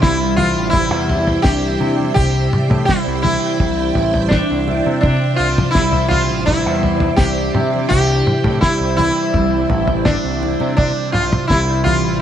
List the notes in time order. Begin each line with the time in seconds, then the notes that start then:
Already playing: C3 E3 D4 E4 C5 D5 E5 G5
0.02 C2 G3 E4, kick, snare
0.36 E3 F4, floor tom, high conga, low conga
0.57 A1
0.70 E4, floor tom
0.74 G3, kick, high conga
0.91 E2
1.09 E4, floor tom
1.27 floor tom
1.42 C2 D4 G4, kick, snare, floor tom
1.80 C3 E4, low conga
1.99 high conga
2.14 C2 C3 G4, kick, floor tom, low conga
2.53 mid tom
2.70 A2, floor tom, mid tom, high conga
2.85 G3 E4, kick, snare
3.06 C2
3.22 E3 E4, floor tom, high conga, low conga
3.60 C2 G3, kick, floor tom, high conga
3.95 A1 E4, floor tom
4.14 floor tom
4.29 D4, kick, snare, floor tom
4.51 C2
4.68 E4, low conga
4.86 C3, high conga
5.01 C3 D4, kick, floor tom
5.36 C2 F4
5.58 floor tom, mid tom, high conga
5.71 E4
5.75 C2 G3, kick, snare, low conga
5.93 floor tom, high conga
6.08 E3 F4, floor tom, high conga, low conga
6.30 A1
6.46 G3 E4, kick, floor tom, high conga
6.66 E2
6.83 E4, floor tom
7.00 floor tom
7.16 C2 D4 G4, kick, snare, floor tom, mid tom
7.55 C3 E4, mid tom, low conga
7.73 high conga
7.89 C2 C3 G4, kick, floor tom, low conga
8.27 mid tom
8.44 A2, floor tom, mid tom, high conga
8.61 G3 E4, kick, snare
8.80 C2
8.97 E3 E4, floor tom, high conga, low conga
9.34 C2 G3, kick, floor tom, high conga
9.70 A1 E4, floor tom
9.88 floor tom
10.05 D4, kick, snare, floor tom
10.24 C2
10.42 E4, low conga
10.60 C3, high conga
10.77 C3 D4, kick, floor tom, low conga
11.12 C2 F4, mid tom
11.32 floor tom, mid tom, high conga
11.47 C2 G3 E4, kick, snare
11.84 E3 F4, floor tom, high conga, low conga
12.04 A1